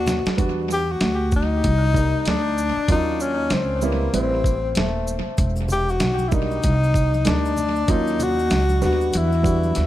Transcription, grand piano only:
0.37 G3 B3 D4 F#4
1.93 G3 A#3 D#4 D5
2.88 F#3 A#3 C#4 F4
3.82 G3 B3 C4 E4
4.13 G3 C4 E4 B4
6.31 G3 A#3 D4 D#4
7.25 G3 A#3 D4 D#4
7.88 F#3 A#3 C#4 F4
8.81 G3 B3 D4 F#4
9.43 G3 B3 D4 F#4

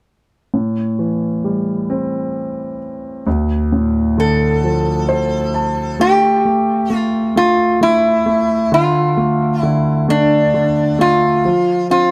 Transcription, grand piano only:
0.54 A2
0.99 E3
1.44 G3
1.90 C4
3.27 D2
3.72 A2
4.18 D3
4.64 F3
5.09 C5
5.54 A5
6.00 A3
6.45 A3
6.90 A3
7.36 A3
7.81 A3
8.26 A3
8.72 D3
9.17 A3
9.63 D3
10.08 A3
10.54 D3
10.99 A3
11.45 F3
11.90 C4

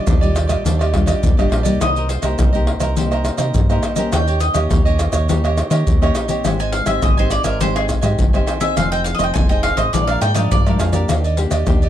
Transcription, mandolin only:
Already playing: D#5
1.82 D#5
2.10 C5
4.13 G5
4.40 D#5
6.60 G#5
6.73 F5
6.87 E5
7.03 D#5
7.19 C5
7.31 D5
7.44 A#4
7.61 C5
7.76 G#4
8.61 E5
8.77 F5
8.92 G5
9.04 F5
9.15 D#5
9.24 G5
9.34 G#5
9.49 G5
9.63 F5
9.77 D#5
9.93 D5
10.07 F5
10.22 G5
10.34 D#5
10.52 D5

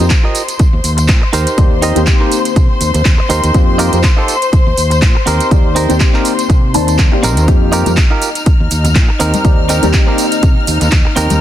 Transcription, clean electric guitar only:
0.23 F4 G4 A#4 D#5
0.59 muted clean electric guitar stroke
0.97 muted clean electric guitar stroke
1.22 muted clean electric guitar stroke
1.33 D#4 G4 A#4 C5
1.82 D#4 G4 A#4 D#5
2.20 D#4 G4 A#4 C5
2.56 muted clean electric guitar stroke
2.94 muted clean electric guitar stroke
3.18 muted clean electric guitar stroke
3.29 D#4 G4 A#4 C5
3.78 D#4 F4 G4 A#4
4.17 D#4 F4 G4 A4
4.52 muted clean electric guitar stroke
4.90 muted clean electric guitar stroke
5.15 muted clean electric guitar stroke
5.26 C4 D#4 G4 A#4
5.75 C4 D#4 G4 A#4
6.13 C4 D#4 G4 A#4
6.49 muted clean electric guitar stroke
6.87 muted clean electric guitar stroke
7.12 muted clean electric guitar stroke
7.23 C4 D#4 G4 A#4
7.72 D#4 F4 G4 A#4
8.10 D#4 F4 G4 A#4
8.46 muted clean electric guitar stroke
8.84 muted clean electric guitar stroke
9.09 muted clean electric guitar stroke
9.19 C4 D#4 G4 A#4
9.69 C4 D#4 G4 A#4
10.07 C4 D#4 G4 A#4
10.42 muted clean electric guitar stroke
10.80 muted clean electric guitar stroke
11.05 muted clean electric guitar stroke
11.16 C4 D#4 G4 A#4

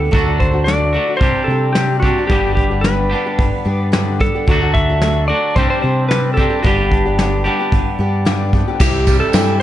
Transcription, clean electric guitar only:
Already playing: G2 D3 G3 B3 D4 G4
0.12 D3 F#3 A3 D4 F#4
0.93 D3 F#3 A3 D4 F#4
1.19 C3 G3 C4 D4 G4
2.03 G3 C4 D4 G4
2.07 C3
2.29 G2 D3 G3 B3 D4 G4
3.10 G2 D3 G3 B3 D4 G4
4.48 D3 F#3 A3 D4 F#4
5.29 D3 F#3 A3 D4 F#4
5.55 C3 G3 C4 D4 G4
6.37 G3 C4 D4 G4
6.41 C3
6.63 G2 D3 G3 B3 D4 G4
7.44 G2 D3 G3 B3 D4 G4
8.80 C3
9.07 G3
9.34 E3

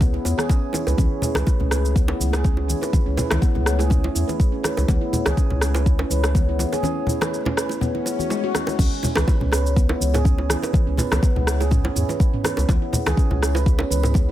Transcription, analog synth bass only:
Already playing: C#2
0.25 E2
0.87 C#2
0.98 C#2
1.36 C#2
1.60 C#2
2.20 C#2
3.07 C#2
3.31 C#2
3.55 C#2
4.16 E2
4.78 C#2
4.89 C#2
5.26 C#2
5.51 C#2
6.11 C#2
8.79 C#2
9.17 C#2
9.42 C#2
10.01 C#2
10.88 C#2
11.12 C#2
11.36 C#2
11.96 E2
12.58 C#2
12.69 C#2
13.06 C#2
13.31 C#2
13.91 C#2

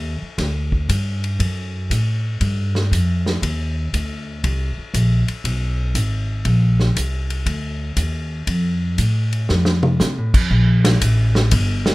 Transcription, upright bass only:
Already playing: D#2
0.22 muted upright bass stroke
0.38 D2
0.89 G2
1.39 F#2
1.90 A2
2.41 G2
2.92 F2
3.42 D#2
3.93 D2
4.44 C2
4.78 muted upright bass stroke
4.94 A#1
5.44 B1
5.95 G#1
6.45 A#1
6.96 C2
7.46 D2
7.97 D#2
8.47 F2
8.98 A2
9.50 F2
10.00 C3
10.18 A2
10.34 F2
10.51 A#1
11.01 A1
11.52 G1

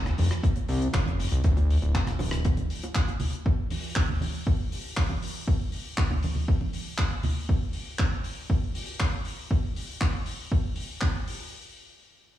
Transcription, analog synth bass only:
Already playing: F1
0.18 F1
0.69 C2
0.94 F1
1.32 C2
1.44 D2
1.82 D1
2.20 D1
2.45 C2

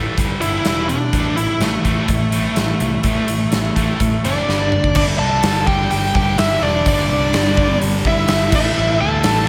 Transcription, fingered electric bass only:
0.18 G1
0.41 G1
0.65 E1
1.13 A1
1.60 A1
1.85 A1
2.08 A1
2.32 A1
2.56 A1
2.80 C2
3.04 A1
3.28 A1
3.53 A1
3.76 A1
4.00 A2
4.24 F#1
4.49 G1
4.96 G1
5.20 C2
5.44 G1
5.91 G1
6.16 G1
6.39 G1
6.61 E1
6.86 G1
7.10 C2
7.34 G1
7.81 G1
8.05 G1
8.29 G1
8.53 A1
8.77 A1
9.01 D2
9.25 A1

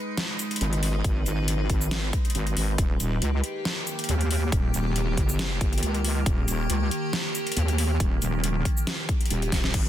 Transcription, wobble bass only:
0.61 G#1
1.04 G#1
1.26 G#1
1.70 G#1
2.35 G#1
2.57 G#1
2.78 D#1
3.00 D#1
3.22 C#2
4.09 D#2
4.52 D#1
4.74 D#1
5.17 G1
5.61 G1
5.83 C#2
6.26 D#1
6.48 D#1
6.70 C#2
7.57 D#2
8.00 D#1
8.22 D#1
9.31 D#1
9.52 D#1
9.74 G#1

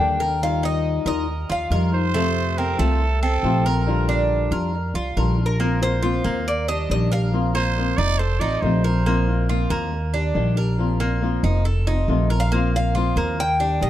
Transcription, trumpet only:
1.94 C5
2.58 A#4
2.79 A4
3.22 A4
3.65 A#4
7.55 C5
7.97 D5
8.18 C5
8.40 D5
8.61 C5

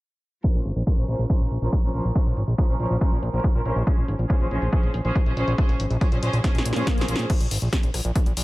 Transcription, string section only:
0.44 F3 C#4 A#4 C5
0.87 F3 C#4 A#4 C5
0.98 F3 C#4 A#4 C5
1.08 F3 C#4 A#4 C5
1.30 F3 C#4 A#4 C5
1.62 F3 C#4 A#4 C5
1.83 F3 C#4 A#4 C5
1.94 F3 C#4 A#4 C5
2.15 F3 C#4 A#4 C5
2.58 F3 C#4 A#4 C5
2.69 F3 C#4 A#4 C5
2.80 F3 C#4 A#4 C5
3.01 F3 C#4 A#4 C5
3.33 F3 C#4 A#4 C5
3.55 F3 C#4 A#4 C5
3.65 F3 C#4 A#4 C5
3.87 C#4 G#4 C5
4.30 F3 C#4 G#4 C5
4.40 F3 C#4 G#4 C5
4.51 F3 C#4 G#4 C5
4.72 F3 C#4 G#4 C5
5.05 F3 C#4 G#4 C5
5.26 F3 C#4 G#4 C5
5.37 F3 C#4 G#4 C5
5.58 F3 C#4 G#4 C5
6.01 F3 C#4 G#4 C5
6.12 F3 C#4 G#4 C5
6.23 F3 C#4 G#4 C5
6.44 F3 C#4 G#4 C5
6.76 F3 C#4 G#4 C5
6.97 F3 C#4 G#4 C5
7.08 F3 C#4 G#4 C5

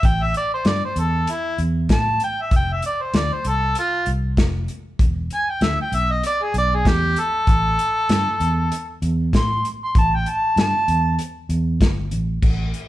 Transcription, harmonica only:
0.06 G5
0.23 E5
0.37 D5
0.54 C5
0.68 D5
0.85 C5
1.00 A4
1.31 E4
1.92 A5
2.24 G5
2.42 E5
2.56 G5
2.73 E5
2.86 D5
3.02 C5
3.17 D5
3.33 C5
3.48 A4
3.79 F4
5.34 G#5
5.50 G5
5.65 E5
5.82 G5
5.95 E5
6.12 D#5
6.26 D5
6.43 G#4
6.58 D5
6.75 G#4
6.88 G4
7.19 A4
9.37 C6
9.84 C6
9.98 A5
10.15 G5
10.29 A5
10.60 A5

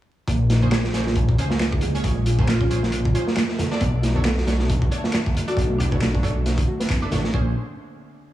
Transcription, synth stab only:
0.62 C#4 G#4 C5
0.94 C#4 G#4 C5
1.38 C#4 G#4 C5
1.95 C#4 G#4 C#5
2.39 C#4 G#4 C5
2.70 C#4 G#4 C5
3.15 C#4 G#4 C5
3.71 D4 A4 D5
4.15 D4 A4 C#5
4.47 D4 A4 C#5
4.91 D4 A4 C#5
5.48 D4 A4 D5
5.92 D4 A4 C#5
6.23 D4 A4 C#5
7.02 D4 A4 B4
7.12 D4 A4 C#5
7.34 C#4 G#4 C5

